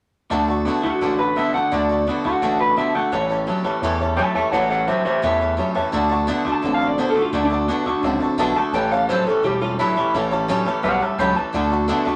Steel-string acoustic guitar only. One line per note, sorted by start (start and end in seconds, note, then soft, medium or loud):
0.30 0.48 D3 medium
0.30 0.48 A3 medium
0.30 0.49 D4 medium
0.30 0.49 F#4 medium
0.30 0.47 A4 medium
0.48 0.66 D4 soft
0.48 0.67 F#4 medium
0.48 0.66 A4 medium
0.65 0.83 A3 medium
0.65 0.84 D4 medium
0.65 0.84 F#4 medium
0.65 0.82 A4 medium
0.83 1.01 D4 soft
0.83 1.02 F#4 medium
0.83 1.01 A4 medium
1.01 1.19 D3 medium
1.01 1.19 A3 medium
1.01 1.19 D4 medium
1.01 1.19 F#4 medium
1.01 1.17 A4 medium
1.19 1.36 D4 soft
1.19 1.37 F#4 soft
1.19 1.36 A4 soft
1.36 1.54 A3 medium
1.36 1.54 D4 medium
1.36 1.54 F#4 medium
1.36 1.53 A4 medium
1.54 1.72 D4 soft
1.54 1.72 F#4 soft
1.54 1.71 A4 soft
1.72 1.89 D3 medium
1.72 1.90 A3 medium
1.72 1.90 D4 medium
1.72 1.90 F#4 medium
1.72 1.88 A4 medium
1.89 2.06 D4 soft
1.89 2.08 F#4 medium
1.89 2.07 A4 medium
2.07 2.24 A3 medium
2.07 2.25 D4 medium
2.07 2.25 F#4 medium
2.07 2.23 A4 medium
2.24 2.42 D4 soft
2.24 2.43 F#4 medium
2.24 2.42 A4 medium
2.42 2.60 D3 medium
2.42 2.60 A3 medium
2.42 2.60 D4 medium
2.42 2.60 F#4 medium
2.42 2.58 A4 medium
2.59 2.77 D4 soft
2.59 2.78 F#4 soft
2.59 2.77 A4 medium
2.77 2.94 A3 medium
2.77 2.95 D4 medium
2.77 2.95 F#4 medium
2.77 2.93 A4 medium
2.95 3.13 D4 soft
2.95 3.13 F#4 soft
2.95 3.12 A4 soft
3.12 3.30 A2 medium
3.12 3.30 E3 medium
3.12 3.30 G3 medium
3.12 3.30 C#4 medium
3.12 3.29 G4 medium
3.12 3.28 A4 medium
3.29 3.45 G3 soft
3.29 3.47 C#4 medium
3.29 3.48 G4 medium
3.29 3.47 A4 medium
3.47 3.65 G3 medium
3.47 3.65 C#4 medium
3.47 3.65 G4 medium
3.47 3.63 A4 medium
3.64 3.83 G3 medium
3.64 3.83 C#4 soft
3.64 3.83 G4 medium
3.64 3.82 A4 medium
3.83 4.00 A2 medium
3.83 4.01 E3 medium
3.83 4.01 G3 medium
3.83 4.01 C#4 loud
3.83 4.00 G4 loud
3.83 3.98 A4 medium
3.99 4.16 G3 soft
3.99 4.17 C#4 soft
3.99 4.18 G4 medium
3.99 4.17 A4 medium
4.17 4.35 G3 medium
4.17 4.35 C#4 medium
4.17 4.35 G4 medium
4.17 4.34 A4 medium
4.35 4.53 G3 soft
4.35 4.53 C#4 soft
4.35 4.53 G4 medium
4.35 4.53 A4 soft
4.53 4.70 A2 medium
4.53 4.71 E3 medium
4.53 4.71 G3 medium
4.53 4.71 C#4 medium
4.53 4.70 G4 medium
4.53 4.69 A4 medium
4.70 4.87 G3 soft
4.70 4.88 C#4 soft
4.70 4.89 G4 medium
4.70 4.88 A4 medium
4.88 5.05 G3 medium
4.88 5.06 C#4 medium
4.88 5.05 G4 medium
4.88 5.04 A4 medium
5.05 5.22 G3 soft
5.05 5.22 C#4 soft
5.05 5.23 G4 medium
5.05 5.23 A4 medium
5.22 5.40 A2 medium
5.22 5.40 E3 medium
5.22 5.41 G3 medium
5.22 5.41 C#4 medium
5.22 5.40 G4 medium
5.22 5.38 A4 medium
5.39 5.56 G3 soft
5.39 5.57 C#4 soft
5.39 5.58 G4 soft
5.39 5.58 A4 soft
5.57 5.75 G3 medium
5.57 5.76 C#4 medium
5.57 5.75 G4 medium
5.57 5.73 A4 medium
5.75 5.92 G3 medium
5.75 5.93 C#4 medium
5.75 5.93 G4 medium
5.75 5.93 A4 medium
5.92 6.10 D3 medium
5.92 6.11 A3 medium
5.92 6.11 D4 medium
5.92 6.10 F#4 loud
5.92 6.08 A4 medium
6.09 6.27 D4 medium
6.09 6.28 F#4 medium
6.09 6.28 A4 medium
6.27 6.45 D3 medium
6.27 6.46 A3 medium
6.27 6.46 D4 loud
6.27 6.45 F#4 loud
6.27 6.43 A4 loud
6.45 6.62 D4 medium
6.45 6.63 F#4 medium
6.45 6.63 A4 medium
6.62 6.80 A3 medium
6.62 6.81 D4 medium
6.62 6.80 F#4 medium
6.62 6.78 A4 medium
6.80 6.98 D4 soft
6.80 6.98 F#4 soft
6.80 6.98 A4 medium
6.98 7.16 D3 medium
6.98 7.16 A3 medium
6.98 7.16 D4 medium
6.98 7.15 F#4 medium
6.98 7.13 A4 medium
7.14 7.32 D4 soft
7.14 7.33 F#4 soft
7.14 7.33 A4 medium
7.33 7.51 D3 medium
7.33 7.51 A3 medium
7.33 7.51 D4 medium
7.33 7.51 F#4 medium
7.33 7.49 A4 medium
7.50 7.68 D4 soft
7.50 7.69 F#4 medium
7.50 7.68 A4 medium
7.68 7.86 D3 medium
7.68 7.86 A3 medium
7.68 7.87 D4 medium
7.68 7.87 F#4 medium
7.68 7.85 A4 medium
7.86 8.03 D4 medium
7.86 8.04 F#4 medium
7.86 8.04 A4 medium
8.03 8.21 A3 medium
8.03 8.22 D4 medium
8.03 8.21 F#4 medium
8.03 8.19 A4 medium
8.20 8.38 D4 soft
8.20 8.38 F#4 soft
8.20 8.38 A4 medium
8.38 8.56 D3 medium
8.38 8.56 A3 loud
8.38 8.57 D4 medium
8.38 8.56 F#4 medium
8.38 8.54 A4 loud
8.55 8.75 D4 soft
8.55 8.75 F#4 medium
8.55 8.74 A4 medium
8.73 8.91 A2 medium
8.73 8.91 E3 medium
8.73 8.92 G3 medium
8.73 8.92 C#4 medium
8.73 8.91 G4 medium
8.73 8.90 A4 medium
8.91 9.09 G3 soft
8.91 9.09 C#4 medium
8.91 9.09 G4 medium
8.91 9.09 A4 medium
9.09 9.27 A2 medium
9.09 9.27 E3 medium
9.09 9.27 G3 medium
9.09 9.27 C#4 medium
9.09 9.27 G4 medium
9.09 9.25 A4 loud
9.27 9.42 G3 soft
9.27 9.43 C#4 medium
9.27 9.44 G4 medium
9.27 9.44 A4 medium
9.43 9.61 G3 medium
9.43 9.62 C#4 medium
9.43 9.61 G4 medium
9.43 9.60 A4 medium
9.61 9.79 G3 soft
9.61 9.79 C#4 soft
9.61 9.79 G4 soft
9.61 9.79 A4 soft
9.79 9.97 A2 medium
9.79 9.97 E3 medium
9.79 9.97 G3 medium
9.79 9.97 C#4 medium
9.79 9.96 G4 medium
9.79 9.95 A4 medium
9.96 10.14 G3 soft
9.96 10.14 C#4 soft
9.96 10.15 G4 medium
9.96 10.14 A4 medium
10.14 10.32 A2 medium
10.14 10.32 E3 medium
10.14 10.32 G3 medium
10.14 10.32 C#4 medium
10.14 10.31 G4 medium
10.14 10.30 A4 medium
10.31 10.48 G3 soft
10.31 10.49 C#4 medium
10.31 10.49 G4 medium
10.31 10.49 A4 medium
10.48 10.66 A2 loud
10.48 10.67 E3 loud
10.48 10.67 G3 loud
10.48 10.67 C#4 loud
10.48 10.66 G4 loud
10.48 10.65 A4 loud
10.66 10.82 G3 medium
10.66 10.83 C#4 medium
10.66 10.84 G4 medium
10.66 10.84 A4 medium
10.83 11.01 G3 medium
10.83 11.02 C#4 medium
10.83 11.01 G4 medium
10.83 11.00 A4 medium
11.01 11.19 G3 soft
11.01 11.19 C#4 soft
11.01 11.19 G4 soft
11.01 11.19 A4 soft
11.19 11.36 A2 medium
11.19 11.37 E3 medium
11.19 11.37 G3 medium
11.19 11.37 C#4 medium
11.19 11.35 G4 medium
11.19 11.34 A4 medium
11.35 11.53 G3 soft
11.35 11.54 C#4 soft
11.35 11.54 G4 soft
11.35 11.53 A4 medium
11.53 11.71 D3 medium
11.53 11.71 A3 medium
11.53 11.72 D4 medium
11.53 11.71 F#4 medium
11.53 11.69 A4 medium
11.70 11.88 D4 medium
11.70 11.88 F#4 medium
11.70 11.88 A4 medium
11.88 12.06 D3 medium
11.88 12.06 A3 medium
11.88 12.07 D4 loud
11.88 12.06 F#4 loud
11.88 12.04 A4 loud
12.05 12.16 D4 medium
12.05 12.16 F#4 medium
12.05 12.16 A4 medium